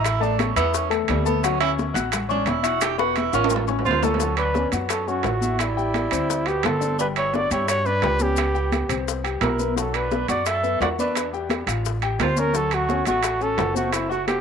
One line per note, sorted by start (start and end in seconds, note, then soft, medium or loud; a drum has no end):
0.00 0.51 A1 loud
0.00 0.15 E4 medium
0.00 0.15 E5 medium
0.00 0.15 E6 medium
0.04 0.23 E4 loud
0.04 high bongo medium
0.04 high conga soft
0.04 high timbale medium
0.04 maracas medium
0.20 0.49 A3 medium
0.20 0.40 D4 loud
0.20 0.50 A4 medium
0.20 0.50 A5 medium
0.20 high bongo soft
0.20 high conga soft
0.20 maracas soft
0.39 0.56 C#4 medium
0.39 high bongo medium
0.39 high conga loud
0.39 high timbale medium
0.39 maracas soft
0.56 1.05 E2 loud
0.56 0.75 B3 loud
0.56 0.85 E4 medium
0.56 0.85 E5 medium
0.56 0.85 E6 medium
0.56 high bongo soft
0.56 high conga soft
0.56 high timbale medium
0.56 maracas medium
0.74 0.91 C#4 loud
0.74 high bongo medium
0.74 high conga soft
0.74 maracas medium
0.90 1.08 E3 soft
0.90 1.19 A3 medium
0.90 1.19 A4 medium
0.90 1.19 A5 medium
0.90 high bongo soft
0.90 high conga soft
0.90 high timbale medium
0.90 maracas soft
1.08 1.89 D2 medium
1.08 1.25 G3 medium
1.08 high bongo soft
1.08 low bongo medium
1.08 high conga medium
1.08 high timbale medium
1.08 maracas soft
1.25 1.39 A3 medium
1.25 1.45 B3 medium
1.25 1.40 A4 medium
1.25 1.40 A5 medium
1.25 high conga medium
1.25 maracas medium
1.43 1.57 F#3 medium
1.43 1.60 C#4 medium
1.43 1.57 F#4 medium
1.43 1.58 F#5 medium
1.43 high bongo medium
1.43 high conga soft
1.43 high timbale medium
1.43 maracas medium
1.60 1.88 C#4 medium
1.60 1.71 E4 loud
1.60 1.89 C#5 medium
1.60 1.89 C#6 medium
1.60 high bongo soft
1.60 high conga soft
1.60 high timbale loud
1.60 maracas soft
1.79 high bongo medium
1.79 high conga medium
1.79 maracas soft
1.94 2.43 A1 medium
1.94 2.23 F#4 medium
1.94 2.23 F#5 medium
1.94 2.23 F#6 medium
1.94 high bongo soft
1.94 high conga loud
1.94 high timbale medium
1.94 maracas medium
2.12 high bongo medium
2.12 high conga soft
2.12 low conga medium
2.12 high timbale medium
2.12 maracas medium
2.29 2.58 C#4 medium
2.29 2.50 D4 loud
2.29 2.58 C#5 medium
2.29 2.58 C#6 medium
2.29 high bongo soft
2.29 high conga soft
2.29 low conga medium
2.29 maracas soft
2.46 3.27 E1 medium
2.46 2.66 E4 medium
2.46 high bongo soft
2.46 low bongo medium
2.46 high conga medium
2.46 high timbale medium
2.46 maracas soft
2.63 2.92 E4 medium
2.63 2.84 F#4 loud
2.63 2.92 E5 medium
2.63 2.92 E6 medium
2.63 high conga soft
2.63 high timbale medium
2.63 maracas medium
2.81 2.98 G4 loud
2.81 high bongo loud
2.81 high conga soft
2.81 high timbale loud
2.81 maracas medium
2.98 3.27 B3 medium
2.98 3.18 F#4 loud
2.98 3.27 B4 medium
2.98 3.27 B5 medium
2.98 high bongo medium
2.98 high conga soft
2.98 maracas soft
3.16 3.34 E4 medium
3.16 high conga loud
3.16 high timbale medium
3.16 maracas soft
3.33 3.82 A1 medium
3.33 3.66 C#4 medium
3.33 3.62 F4 medium
3.33 3.62 F5 medium
3.33 3.62 F6 medium
3.33 high bongo medium
3.33 high conga soft
3.33 high timbale medium
3.33 maracas medium
3.44 high timbale medium
3.50 low bongo medium
3.50 high conga soft
3.50 maracas medium
3.56 low timbale medium
3.67 3.96 C#4 medium
3.67 3.96 C#5 medium
3.67 3.97 C#6 medium
3.67 low bongo medium
3.67 high conga soft
3.67 maracas soft
3.79 low timbale medium
3.85 4.67 D2 medium
3.85 4.05 F4 medium
3.85 4.06 C5 medium
3.85 high conga medium
3.85 maracas soft
3.91 low timbale medium
4.03 4.17 A3 medium
4.03 4.37 C#4 medium
4.03 4.17 A4 medium
4.03 4.37 A4 loud
4.03 4.17 A5 medium
4.03 low bongo medium
4.03 high conga medium
4.03 low timbale medium
4.03 maracas medium
4.14 low timbale medium
4.20 4.49 F#3 medium
4.20 4.50 F#4 medium
4.20 high bongo medium
4.20 high conga soft
4.20 maracas medium
4.37 4.70 D4 medium
4.37 4.70 B4 loud
4.37 high bongo soft
4.37 high conga soft
4.37 high timbale medium
4.37 maracas soft
4.54 4.69 C#4 medium
4.54 4.69 C#5 medium
4.54 high bongo medium
4.54 high conga medium
4.54 low timbale medium
4.54 maracas soft
4.72 5.21 F#2 medium
4.72 5.01 F#4 medium
4.72 5.01 F#5 medium
4.72 high conga medium
4.72 high timbale medium
4.72 maracas medium
4.89 5.10 C#4 medium
4.89 5.10 A4 medium
4.89 high bongo medium
4.89 high conga soft
4.89 high timbale medium
4.89 maracas medium
5.06 5.61 A3 medium
5.06 5.22 C#4 medium
5.06 5.61 F#4 medium
5.06 5.22 C#5 medium
5.06 high bongo soft
5.06 high conga soft
5.06 maracas soft
5.23 6.06 A1 medium
5.23 5.39 F#4 medium
5.23 5.39 F#5 medium
5.23 high bongo medium
5.23 low bongo medium
5.23 high conga soft
5.23 high timbale medium
5.23 low timbale medium
5.23 maracas soft
5.41 5.71 E4 medium
5.41 5.71 E5 medium
5.41 high bongo soft
5.41 high conga medium
5.41 maracas medium
5.59 6.49 G3 medium
5.59 6.49 E4 medium
5.59 high bongo medium
5.59 high conga soft
5.59 high timbale medium
5.59 maracas medium
5.77 6.05 G4 medium
5.77 6.05 G5 medium
5.77 high bongo soft
5.77 high conga soft
5.77 maracas soft
5.94 high bongo medium
5.94 high conga medium
5.94 high timbale medium
5.94 low timbale medium
5.94 maracas soft
6.11 6.60 D2 medium
6.11 6.40 C4 medium
6.11 6.40 C5 medium
6.11 high conga soft
6.11 high timbale medium
6.11 maracas medium
6.29 high bongo medium
6.29 high conga soft
6.29 maracas medium
6.46 6.67 B3 medium
6.46 6.75 F#4 medium
6.46 6.67 G4 medium
6.46 6.75 F#5 medium
6.46 high conga soft
6.46 high timbale medium
6.46 maracas soft
6.63 7.45 G1 medium
6.63 6.98 C4 medium
6.63 6.99 A4 medium
6.63 high bongo medium
6.63 low bongo medium
6.63 high conga medium
6.63 high timbale medium
6.63 low timbale medium
6.63 maracas soft
6.80 6.95 D4 medium
6.80 6.95 D5 medium
6.80 high bongo soft
6.80 high conga medium
6.80 maracas medium
6.99 7.28 G3 medium
6.99 7.06 D4 medium
6.99 7.28 G4 medium
6.99 7.08 B4 medium
6.99 high bongo medium
6.99 high conga soft
6.99 maracas medium
7.16 7.36 E4 medium
7.16 7.37 C#5 loud
7.16 high bongo soft
7.16 high conga soft
7.16 high timbale medium
7.16 maracas soft
7.33 7.47 D4 medium
7.33 7.51 F#4 medium
7.33 7.48 D5 medium
7.33 7.52 D5 loud
7.33 high bongo medium
7.33 high conga medium
7.33 low timbale medium
7.33 maracas soft
7.51 7.99 G2 medium
7.51 7.68 E4 medium
7.51 7.80 G4 medium
7.51 7.68 C#5 medium
7.51 7.80 G5 medium
7.51 high conga medium
7.51 high timbale medium
7.51 maracas medium
7.68 7.87 F#4 medium
7.68 7.87 C#5 loud
7.68 high bongo medium
7.68 high conga soft
7.68 high timbale medium
7.68 maracas medium
7.85 8.22 D4 medium
7.85 8.00 D4 medium
7.85 8.24 B4 loud
7.85 8.00 D5 medium
7.85 high bongo soft
7.85 high conga soft
7.85 maracas soft
8.02 8.84 C#2 medium
8.02 8.17 G4 medium
8.02 8.17 G5 medium
8.02 high bongo medium
8.02 low bongo medium
8.02 high conga soft
8.02 high timbale medium
8.02 low timbale medium
8.02 maracas soft
8.19 8.98 B3 medium
8.19 8.49 C#4 medium
8.19 8.98 G4 loud
8.19 8.49 C#5 medium
8.19 high bongo soft
8.19 high conga medium
8.19 maracas medium
8.36 high bongo medium
8.36 high conga soft
8.36 high timbale medium
8.36 maracas medium
8.55 8.83 G4 medium
8.55 8.83 G5 medium
8.55 high bongo soft
8.55 high conga soft
8.55 maracas soft
8.72 high bongo medium
8.72 high conga loud
8.72 high timbale medium
8.72 low timbale medium
8.72 maracas soft
8.89 9.38 C2 medium
8.89 9.18 C4 medium
8.89 9.18 C5 medium
8.89 high timbale medium
8.89 maracas medium
9.07 high bongo medium
9.07 high conga soft
9.07 maracas medium
9.24 9.53 G4 medium
9.24 9.53 G5 medium
9.24 high conga soft
9.24 high timbale medium
9.24 maracas soft
9.41 10.23 B1 loud
9.41 9.74 E4 medium
9.41 9.75 A#4 medium
9.41 high bongo medium
9.41 low bongo medium
9.41 high conga medium
9.41 high timbale medium
9.41 low timbale medium
9.41 maracas soft
9.59 9.74 B3 medium
9.59 9.74 B4 medium
9.59 high bongo soft
9.59 high conga medium
9.59 maracas medium
9.76 10.05 F#3 medium
9.76 9.94 C#4 medium
9.76 10.05 F#4 medium
9.76 9.97 A4 medium
9.76 high bongo medium
9.76 high conga soft
9.76 maracas medium
9.93 10.28 D4 medium
9.93 10.29 B4 loud
9.93 high bongo soft
9.93 high conga soft
9.93 high timbale medium
9.93 maracas soft
10.11 10.26 B3 medium
10.11 10.26 B4 medium
10.11 high bongo medium
10.11 high conga medium
10.11 low timbale medium
10.11 maracas soft
10.28 10.77 F#2 medium
10.28 10.57 F#4 medium
10.28 10.49 F#4 medium
10.28 10.48 D5 loud
10.28 10.57 F#5 medium
10.28 high conga medium
10.28 high timbale medium
10.28 maracas medium
10.46 10.81 A4 medium
10.46 10.81 E5 loud
10.46 high bongo medium
10.46 high conga soft
10.46 high timbale medium
10.46 maracas medium
10.63 10.78 B3 medium
10.63 10.78 B4 medium
10.63 high bongo soft
10.63 high conga soft
10.63 maracas soft
10.80 11.62 E2 medium
10.80 10.95 F#4 medium
10.80 10.89 F#4 medium
10.80 10.89 D5 medium
10.80 10.95 F#5 medium
10.80 high bongo medium
10.80 low bongo medium
10.80 high conga soft
10.80 high timbale medium
10.80 low timbale medium
10.80 maracas soft
10.98 11.27 D4 medium
10.98 11.31 D4 medium
10.98 11.31 B4 medium
10.98 11.27 D5 medium
10.98 high bongo soft
10.98 high conga medium
10.98 maracas medium
11.15 high bongo medium
11.15 high conga soft
11.15 high timbale medium
11.15 maracas medium
11.33 11.62 G4 medium
11.33 11.62 G5 medium
11.33 high bongo soft
11.33 high conga soft
11.33 maracas soft
11.50 high bongo medium
11.50 high conga loud
11.50 high timbale medium
11.50 low timbale medium
11.50 maracas soft
11.67 12.16 A1 medium
11.67 11.96 F4 medium
11.67 11.96 F5 medium
11.67 high conga soft
11.67 high timbale medium
11.67 maracas medium
11.85 high bongo medium
11.85 high conga soft
11.85 maracas medium
12.01 12.31 G4 medium
12.01 12.31 G5 medium
12.01 high conga soft
12.01 high timbale medium
12.01 maracas soft
12.19 13.00 D2 medium
12.19 12.41 F4 medium
12.19 12.41 C5 medium
12.19 high bongo medium
12.19 low bongo medium
12.19 high conga medium
12.19 high timbale medium
12.19 low timbale medium
12.19 maracas soft
12.36 12.51 C#4 medium
12.36 12.56 C#4 medium
12.36 12.58 A#4 loud
12.36 12.51 C#5 medium
12.36 high bongo soft
12.36 high conga medium
12.36 maracas medium
12.53 12.82 F#3 medium
12.53 12.75 C#4 medium
12.53 12.82 F#4 medium
12.53 12.75 A4 medium
12.53 high bongo medium
12.53 maracas medium
12.71 13.06 A3 medium
12.71 13.07 F#4 loud
12.71 high bongo soft
12.71 high conga soft
12.71 high timbale medium
12.71 maracas soft
12.89 13.04 C#4 medium
12.89 13.04 C#5 medium
12.89 high bongo medium
12.89 high conga loud
12.89 low timbale medium
12.89 maracas soft
13.05 13.55 A1 medium
13.05 13.43 A3 medium
13.05 13.35 F#4 medium
13.05 13.44 F#4 medium
13.05 13.35 F#5 medium
13.05 high conga loud
13.05 high timbale medium
13.05 maracas medium
13.23 high bongo medium
13.23 high conga soft
13.23 high timbale medium
13.23 maracas medium
13.41 13.55 C#4 medium
13.41 13.76 C#4 medium
13.41 13.76 A4 loud
13.41 13.55 C#5 medium
13.41 high bongo soft
13.41 high conga soft
13.41 maracas soft
13.57 14.39 F#1 loud
13.57 13.72 F#4 medium
13.57 13.72 F#5 medium
13.57 high bongo medium
13.57 low bongo medium
13.57 high conga soft
13.57 high timbale medium
13.57 low timbale medium
13.57 maracas soft
13.74 13.93 A3 medium
13.74 14.03 C4 medium
13.74 13.95 F#4 medium
13.74 14.04 C5 medium
13.74 high bongo soft
13.74 high conga medium
13.74 maracas medium
13.93 14.09 A3 medium
13.93 14.10 E4 medium
13.93 high bongo medium
13.93 high conga soft
13.93 high timbale medium
13.93 maracas medium
14.09 14.26 A3 medium
14.09 14.38 F#4 medium
14.09 14.27 F#4 medium
14.09 14.38 F#5 medium
14.09 high bongo soft
14.09 high conga soft
14.09 maracas soft
14.27 14.41 C4 medium
14.27 14.41 G4 medium
14.27 high bongo medium
14.27 high conga medium
14.27 high timbale medium
14.27 low timbale medium
14.27 maracas soft